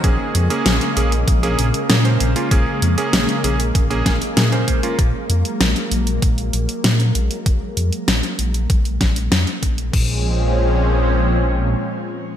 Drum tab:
CC |----------------|----------------|----------------|----------------|
HH |x-xxxxxxxxxxxxxx|x-xxxxxxxxxxxxxx|x-xxxxxxxxxxxxxx|x-xxxxxxxxxxxxxx|
SD |----o-------o---|----o-----o-o---|----o-------o---|----o-----o-o---|
BD |o-------o-------|o-------o-o---o-|o-------o-------|o-------o-o---o-|

CC |x---------------|
HH |----------------|
SD |----------------|
BD |o---------------|